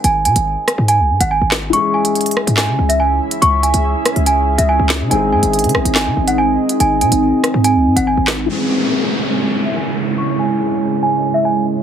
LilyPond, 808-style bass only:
\new Staff \with { instrumentName = "808-style bass" } { \clef bass \time 4/4 \key cis \minor \tempo 4 = 142 gis,,8 bis,16 gis,,8 r8 gis,8 bis,,16 gis,16 gis,,8 gis,,8. | r4. r16 gis,8 cis16 cis,4 r8 | cis,8. cis,8 r8 cis,4 cis,8 cis,8 cis16 | gis,,8 gis,16 gis,,8 dis16 gis,,16 gis,,8 dis16 gis,,4 r8 |
gis,,8 bis,16 gis,,8 r8 gis,8 bis,,16 gis,16 gis,,8 gis,,8. | r1 | r1 | }